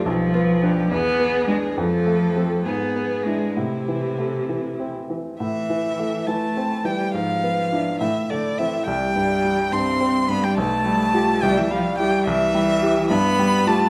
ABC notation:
X:1
M:6/8
L:1/16
Q:3/8=70
K:Am
V:1 name="Violin"
D2 F2 G2 ^G6 | A6 ^G6 | E8- E z3 | e6 a4 g2 |
f6 e2 d2 e2 | g6 c'4 b g | a6 g e f2 g2 | [K:C] e6 b4 a2 |]
V:2 name="Grand piano"
B,,,2 B,2 [DB]2 E,,2 B,2 [D^G]2 | F,,2 A,2 [CA]2 ^G,,2 B,2 [DE]2 | A,,2 E,2 A,2 E,2 C2 E,2 | A,,2 E,2 A,2 E,2 C2 E,2 |
^G,,2 B,2 [DE]2 A,,2 A,2 [CE]2 | C,,2 G,,2 G,2 G,,2 C2 G,,2 | B,,,2 G,2 [FG]2 C,,2 G,2 [EG]2 | [K:C] C,,2 G,2 [EG]2 G,,2 G,2 [FG]2 |]
V:3 name="Cello" clef=bass
F,6 B,4 ^G,2 | F,6 B,4 ^G,2 | C,8- C,2 z2 | E,6 A,4 G,2 |
F,6 E,2 D,2 E,2 | G,6 C4 B, G, | A,6 G, E, F,2 G,2 | [K:C] E,6 B,4 A,2 |]